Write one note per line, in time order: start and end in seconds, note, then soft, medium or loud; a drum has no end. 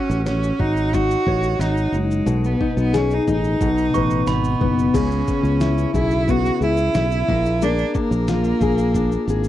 0.00 0.27 C#4 medium
0.00 0.59 F#4 medium
0.10 0.51 A1 loud
0.10 shaker soft
0.26 0.61 C#4 medium
0.26 1.26 C#5 medium
0.26 snare medium
0.26 shaker medium
0.43 shaker soft
0.59 1.15 G#1 medium
0.59 0.96 D#4 medium
0.59 1.59 F#4 medium
0.59 kick medium
0.77 shaker soft
0.93 1.92 D#4 medium
0.93 1.63 F#4 loud
0.93 kick medium
0.93 shaker medium
1.09 snare soft
1.09 shaker soft
1.27 1.54 A1 medium
1.27 2.34 C#5 medium
1.27 kick medium
1.43 shaker medium
1.59 1.87 G#1 medium
1.59 1.97 D#4 medium
1.59 2.60 F#4 medium
1.59 snare loud
1.59 shaker medium
1.77 shaker medium
1.92 2.20 F#1 medium
1.92 2.47 G#3 loud
1.92 2.61 D#4 medium
1.92 shaker soft
2.11 shaker soft
2.26 2.54 B1 loud
2.26 3.60 B2 medium
2.26 shaker medium
2.44 2.78 B3 medium
2.44 shaker soft
2.61 3.26 D#4 medium
2.61 kick medium
2.77 3.18 B1 medium
2.77 2.98 B3 medium
2.77 shaker soft
2.94 3.15 C#4 medium
2.94 3.67 G#4 medium
2.94 snare loud
2.94 shaker medium
3.11 3.29 D#4 medium
3.11 shaker soft
3.27 3.55 A1 medium
3.27 3.68 D#4 medium
3.27 kick medium
3.27 shaker soft
3.32 4.26 D#4 medium
3.44 shaker soft
3.61 3.88 B1 loud
3.61 5.01 B2 medium
3.61 kick medium
3.61 shaker medium
3.78 shaker soft
3.94 4.22 A1 medium
3.94 4.94 B4 medium
3.94 4.29 C#6 medium
3.94 kick medium
3.94 shaker soft
4.10 shaker medium
4.27 4.54 G#1 medium
4.27 4.98 B3 medium
4.27 5.02 D#4 medium
4.27 4.90 B5 medium
4.27 snare loud
4.27 shaker medium
4.44 shaker soft
4.61 4.88 F#1 medium
4.61 5.28 B3 medium
4.61 kick medium
4.79 shaker soft
4.94 5.22 C#2 medium
4.94 7.34 C#3 medium
4.94 5.95 C#4 medium
4.94 5.94 G#4 medium
4.94 kick loud
4.94 crash medium
4.94 shaker medium
5.11 shaker soft
5.27 6.27 B3 medium
5.27 kick medium
5.27 shaker soft
5.43 5.85 C#2 medium
5.43 shaker soft
5.61 6.93 E4 medium
5.61 snare loud
5.61 shaker medium
5.78 shaker soft
5.94 6.49 B1 medium
5.94 6.31 E4 loud
5.94 6.61 G#4 medium
5.94 kick medium
5.94 shaker soft
6.11 shaker soft
6.28 7.35 B3 medium
6.28 6.62 F#4 loud
6.28 kick medium
6.28 shaker medium
6.46 shaker soft
6.61 6.88 C#2 medium
6.61 7.65 E4 loud
6.61 7.62 G#4 medium
6.61 shaker medium
6.77 shaker medium
6.94 7.22 B1 medium
6.94 7.35 E4 medium
6.94 snare loud
6.94 shaker medium
7.11 shaker medium
7.28 7.83 A#1 medium
7.28 7.61 A#3 medium
7.28 kick loud
7.46 shaker medium
7.61 9.48 A#3 medium
7.61 7.98 D4 medium
7.61 8.61 G#4 medium
7.61 shaker medium
7.78 shaker soft
7.94 9.48 A#3 loud
7.94 8.95 D4 medium
7.94 kick medium
7.94 shaker soft
8.11 8.52 A#1 medium
8.11 shaker soft
8.28 9.48 F4 medium
8.28 snare loud
8.28 shaker medium
8.44 shaker soft
8.61 9.16 A#1 medium
8.61 9.28 G#4 medium
8.61 kick medium
8.61 shaker soft
8.78 shaker soft
8.94 9.48 D4 medium
8.94 kick medium
8.94 shaker medium
9.12 shaker soft
9.27 9.48 G#1 medium
9.27 9.48 G#4 medium
9.27 shaker medium
9.44 shaker medium